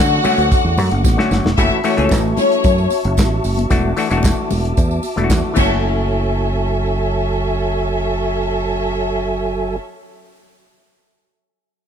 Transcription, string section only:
0.00 1.27 F#4 loud
0.00 1.27 F#5 loud
1.57 1.68 E4 loud
1.57 1.68 E5 loud
1.84 1.95 C#4 medium
1.84 1.95 C#5 medium
2.37 2.88 C#4 medium
2.37 2.88 C#5 loud
5.56 9.75 C#4 medium
5.56 9.75 A4 medium
5.56 9.75 E5 medium

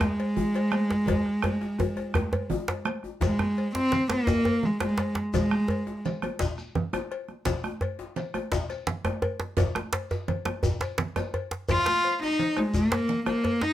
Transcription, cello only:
0.02 2.86 G#3 loud
3.22 3.71 G#3 loud
3.76 4.08 C4 loud
4.12 4.67 A#3 loud
4.65 4.82 G#3 medium
4.83 5.15 G#3 medium
5.35 6.01 G#3 medium
11.71 12.19 F4 loud
12.23 12.59 D#4 loud
12.58 12.77 G#3 medium
12.75 13.26 A#3 loud
13.26 13.63 A#3 medium
13.62 13.73 D#4 loud

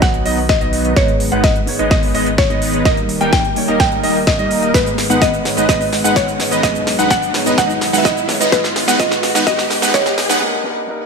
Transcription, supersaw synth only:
0.00 0.23 F#3 medium
0.00 0.23 B3 medium
0.00 0.23 D#4 medium
0.00 0.23 B4 medium
0.00 0.23 D#5 medium
0.26 0.39 F#3 medium
0.26 0.39 B3 medium
0.26 0.39 D#4 medium
0.26 0.39 B4 medium
0.26 0.39 D#5 loud
0.61 0.94 F#3 medium
0.61 0.94 B3 medium
0.61 0.94 D#4 medium
0.61 0.94 B4 medium
0.61 0.94 D#5 medium
0.96 1.10 G#3 medium
0.96 1.10 B3 medium
0.96 1.10 D#4 medium
0.96 1.10 B4 medium
0.96 1.10 D#5 medium
1.32 1.54 G#3 loud
1.32 1.54 B3 medium
1.32 1.54 D#4 medium
1.32 1.54 B4 medium
1.32 1.54 F#5 loud
1.79 2.12 G#3 medium
1.79 2.12 B3 medium
1.79 2.12 D#4 medium
1.79 2.12 B4 medium
1.79 2.12 D#5 medium
2.14 2.28 G#3 medium
2.14 2.28 B3 medium
2.14 2.28 D#4 medium
2.14 2.28 B4 medium
2.14 2.28 D#5 loud
2.50 2.83 G#3 medium
2.50 2.83 B3 medium
2.50 2.83 D#4 medium
2.50 2.83 B4 medium
2.50 2.83 D#5 loud
2.85 2.99 G3 medium
2.85 2.99 A#3 medium
2.85 2.99 D#4 medium
2.85 2.99 A#4 medium
2.85 2.99 D#5 medium
3.21 3.43 G3 loud
3.21 3.43 A#3 medium
3.21 3.43 D#4 medium
3.21 3.43 A#4 medium
3.21 3.43 G5 loud
3.68 4.01 G3 medium
3.68 4.01 A#3 medium
3.68 4.01 D#4 medium
3.68 4.01 A#4 medium
3.68 4.01 D#5 medium
4.04 4.17 G3 medium
4.04 4.17 A#3 medium
4.04 4.17 D#4 medium
4.04 4.17 A#4 medium
4.04 4.17 D#5 loud
4.39 4.72 G3 medium
4.39 4.72 A#3 medium
4.39 4.72 D#4 medium
4.39 4.72 A#4 medium
4.39 4.72 D#5 loud
4.74 4.88 G#3 medium
4.74 4.88 B3 medium
4.74 4.88 D#4 medium
4.74 4.88 B4 medium
4.74 4.88 D#5 medium
5.10 5.31 G#3 medium
5.10 5.31 B3 medium
5.10 5.31 D#4 medium
5.10 5.31 B4 medium
5.10 5.31 F#5 loud
5.57 5.67 G#3 medium
5.57 5.67 B3 medium
5.57 5.67 D#4 medium
5.57 5.67 B4 medium
5.57 5.67 D#5 medium
5.69 5.82 G#3 medium
5.69 5.82 B3 medium
5.69 5.82 D#4 medium
5.69 5.82 B4 medium
5.69 5.82 D#5 medium
6.04 6.26 G#3 medium
6.04 6.26 B3 medium
6.04 6.26 D#4 medium
6.04 6.26 B4 medium
6.04 6.26 F#5 loud
6.52 6.61 G#3 medium
6.52 6.61 B3 medium
6.52 6.61 D#4 medium
6.52 6.61 B4 medium
6.52 6.61 D#5 medium
6.63 6.77 G#3 medium
6.63 6.77 B3 medium
6.63 6.77 D#4 medium
6.63 6.77 B4 medium
6.63 6.77 D#5 medium
6.99 7.20 G#3 medium
6.99 7.20 B3 medium
6.99 7.20 D#4 medium
6.99 7.20 B4 medium
6.99 7.20 F#5 loud
7.46 7.56 G#3 medium
7.46 7.56 B3 medium
7.46 7.56 D#4 medium
7.46 7.56 B4 medium
7.46 7.56 D#5 medium
7.58 7.71 G#3 medium
7.58 7.71 B3 medium
7.58 7.71 D#4 medium
7.58 7.71 B4 medium
7.58 7.71 D#5 medium
7.93 8.15 G#3 medium
7.93 8.15 B3 medium
7.93 8.15 D#4 medium
7.93 8.15 B4 medium
7.93 8.15 F#5 loud
8.40 8.50 G#3 medium
8.40 8.50 B3 medium
8.40 8.50 D#4 medium
8.40 8.50 B4 medium
8.40 8.50 D#5 loud
8.52 8.66 G#3 medium
8.52 8.66 B3 medium
8.52 8.66 D#4 medium
8.52 8.66 B4 medium
8.52 8.66 D#5 medium
8.88 8.98 G#3 loud
8.88 8.98 B3 medium
8.88 8.98 D#4 medium
8.88 8.98 B4 medium
8.88 8.98 F#5 loud
9.00 9.13 G#3 medium
9.00 9.13 B3 medium
9.00 9.13 D#4 medium
9.00 9.13 B4 medium
9.00 9.13 D#5 loud
9.35 9.45 G#3 loud
9.35 9.45 B3 medium
9.35 9.45 D#4 medium
9.35 9.45 B4 medium
9.35 9.45 F#5 loud
9.47 9.60 G#3 medium
9.47 9.60 B3 medium
9.47 9.60 D#4 medium
9.47 9.60 B4 medium
9.47 9.60 D#5 loud
9.82 9.92 G#3 loud
9.82 9.92 B3 medium
9.82 9.92 D#4 medium
9.82 9.92 B4 medium
9.82 9.92 F#5 loud
9.94 10.08 G#3 medium
9.94 10.08 B3 medium
9.94 10.08 D#4 medium
9.94 10.08 B4 medium
9.94 10.08 D#5 medium
10.29 10.39 G#3 loud
10.29 10.39 B3 loud
10.29 10.39 D#4 medium
10.29 10.39 B4 medium
10.29 10.39 F#5 loud

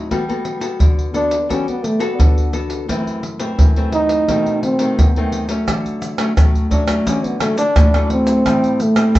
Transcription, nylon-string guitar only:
0.11 0.77 G3 medium
0.11 0.22 B3 medium
0.11 0.23 F#4 medium
0.11 0.23 A4 medium
0.29 0.58 B3 medium
0.29 0.58 F#4 medium
0.29 0.58 A4 medium
0.60 1.08 B3 medium
0.60 1.09 F#4 medium
0.60 1.09 A4 medium
0.79 1.46 D3 medium
1.14 1.35 B3 medium
1.14 1.35 F#4 soft
1.14 1.35 A4 medium
1.49 2.16 G3 medium
1.49 1.82 B3 medium
1.49 1.82 F#4 soft
1.49 1.83 A4 medium
1.99 2.47 B3 medium
1.99 2.48 F#4 medium
1.99 2.48 A4 medium
2.19 2.85 D3 medium
2.53 2.86 B3 medium
2.53 2.86 F#4 soft
2.53 2.86 A4 medium
2.88 3.55 F#2 medium
2.88 3.22 E3 medium
2.88 3.22 A3 medium
2.88 3.22 C4 medium
3.39 3.70 E3 medium
3.39 3.70 A3 medium
3.39 3.70 C4 medium
3.59 4.25 F#2 medium
3.77 4.23 E3 medium
3.77 4.23 A3 medium
3.77 4.23 C4 medium
4.28 4.95 B2 medium
4.28 4.75 D#3 medium
4.28 4.75 A3 medium
4.28 4.75 C4 medium
4.79 5.09 D#3 medium
4.79 5.09 A3 medium
4.79 5.10 C4 medium
4.99 5.64 F#2 medium
5.17 5.45 D#3 medium
5.17 5.45 A3 medium
5.17 5.46 C4 medium
5.49 6.14 F#3 medium
5.49 6.14 A3 medium
5.49 6.14 C#4 medium
5.68 6.34 D3 medium
6.18 6.31 F#3 medium
6.18 6.31 A3 medium
6.18 6.31 C#4 medium
6.37 7.03 A2 medium
6.37 6.66 F#3 medium
6.37 6.67 A3 medium
6.37 6.67 C#4 medium
6.71 6.82 F#3 medium
6.71 6.82 A3 soft
6.71 6.82 C#4 medium
6.87 7.35 F#3 medium
6.87 7.35 A3 medium
6.87 7.35 C#4 medium
7.06 7.72 D3 medium
7.40 7.61 F#3 medium
7.40 7.61 A3 medium
7.40 7.62 C#4 medium
7.76 8.42 A2 medium
7.76 7.86 F#3 medium
7.76 7.87 A3 medium
7.76 7.87 C#4 medium
7.94 8.40 F#3 medium
7.94 8.41 A3 medium
7.94 8.41 C#4 medium
8.46 9.12 A2 medium
8.46 8.78 G3 medium
8.46 8.78 C4 medium
8.46 8.79 E4 medium
8.96 9.19 G3 medium
8.96 9.19 C4 medium
8.96 9.19 E4 medium
9.15 9.19 E3 medium

